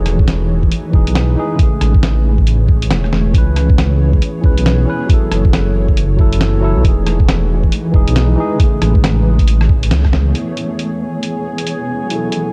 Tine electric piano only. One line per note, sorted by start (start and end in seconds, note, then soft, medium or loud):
0.00 0.89 E3 medium
0.00 0.91 D#4 medium
0.00 0.93 G#4 loud
0.91 1.34 E3 medium
0.91 1.35 D#4 medium
0.95 1.36 G#4 medium
1.35 1.56 E3 medium
1.35 1.57 D#4 medium
1.39 1.58 G#4 loud
1.55 2.64 C#3 medium
1.55 2.66 A3 medium
1.63 2.69 G#4 loud
3.30 4.40 E3 medium
3.34 4.42 C#4 medium
3.34 4.44 B4 loud
4.42 4.84 E3 medium
4.42 4.85 C#4 medium
4.42 4.86 B4 medium
4.86 5.06 E3 medium
4.86 5.07 C#4 medium
4.90 5.08 B4 loud
5.06 6.15 F#3 medium
5.06 6.17 E4 medium
5.14 6.19 A4 loud
6.17 6.59 F#3 medium
6.17 6.61 E4 medium
6.21 6.62 A4 loud
6.61 6.82 F#3 medium
6.61 6.83 E4 medium
6.61 6.83 A4 loud
6.80 7.90 E3 medium
6.80 7.92 D#4 medium
6.88 7.94 G#4 loud
7.92 8.35 E3 medium
7.92 8.36 D#4 medium
7.92 8.37 G#4 loud
8.36 8.57 E3 medium
8.36 8.58 D#4 medium
8.40 8.59 G#4 loud
8.56 9.65 C#3 medium
8.56 9.67 A3 medium
8.64 9.69 G#4 loud
10.31 12.06 B3 medium
10.35 12.08 E4 medium
10.35 12.10 C#5 medium
12.07 12.53 F#3 medium
12.11 12.53 E4 medium
12.11 12.53 A4 medium